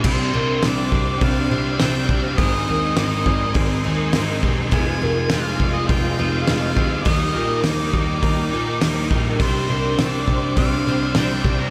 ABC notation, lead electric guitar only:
X:1
M:4/4
L:1/16
Q:1/4=103
K:Cm
V:1 name="Lead electric guitar"
c4 d4 f4 g3 f | e4 e4 z8 | a4 f3 e g4 f4 | e4 d8 z4 |
c4 d4 f4 g3 b |]